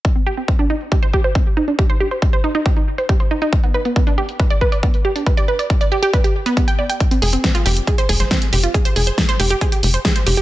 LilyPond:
<<
  \new Staff \with { instrumentName = "Synth arpeggio sound" } { \time 4/4 \key c \minor \tempo 4 = 138 r16 c'16 g'16 c'16 c'16 d'16 ees'16 r16 g'16 c''16 g'16 c''16 c'16 r16 ees'16 d'16 | g'16 c''16 g'16 c''16 r16 c''16 ees'16 ees'16 g'16 ees'16 r16 c''16 g'16 c''16 ees'16 ees'16 | r16 b16 b'16 b16 b16 d'16 g'16 r16 b'16 d''16 b'16 d''16 b16 r16 g'16 d'16 | b'16 d''16 b'16 d''16 r16 d''16 g'16 g'16 b'16 g'16 r16 b16 b16 g''16 d''16 g''16 |
r16 c'16 aes'16 c'16 c'16 f'16 g'16 r16 aes'16 c''16 aes'16 c''16 c'16 r16 g'16 f'16 | aes'16 c''16 aes'16 c''16 r16 c''16 g'16 g'16 aes'16 g'16 r16 c''16 aes'16 c''16 g'16 g'16 | }
  \new Staff \with { instrumentName = "Analog synth bass" } { \clef bass \time 4/4 \key c \minor r1 | r1 | r1 | r1 |
r8 f,,8 r8 f,,8 r8 f,,8 r8 f,,8 | r8 f,,8 r8 f,,8 r8 f,,8 r8 f,,8 | }
  \new DrumStaff \with { instrumentName = "Drums" } \drummode { \time 4/4 bd16 hh8 hh16 bd16 hh8 hh16 bd16 hh16 bd16 hh16 bd16 hh8 hh16 | bd16 hh8 hh16 bd16 hh8 hh16 <hh bd>16 hh8 hh16 <hh bd>16 hh8 hh16 | <hh bd>16 hh8 hh16 <hh bd>16 hh8 hh16 <hh bd>16 hh16 bd16 hh16 <hh bd>16 hh8 hh16 | <hh bd>16 hh8 hh16 <hh bd>16 hh8 hh16 <hh bd>16 hh8 hh16 <hh bd>16 hh8 hh16 |
<hh bd>16 hh16 hho16 hh16 <hh bd sn>16 hh16 hho16 hh16 <hh bd>16 hh16 <hho bd>16 <hh sn>16 <hh bd sn>16 hh16 hho16 hh16 | <hh bd>16 hh16 hho16 hh16 <hh bd sn>16 hh16 hho16 hh16 <hh bd>16 hh16 hho16 hh16 <hh bd sn>16 hh16 hho16 hh16 | }
>>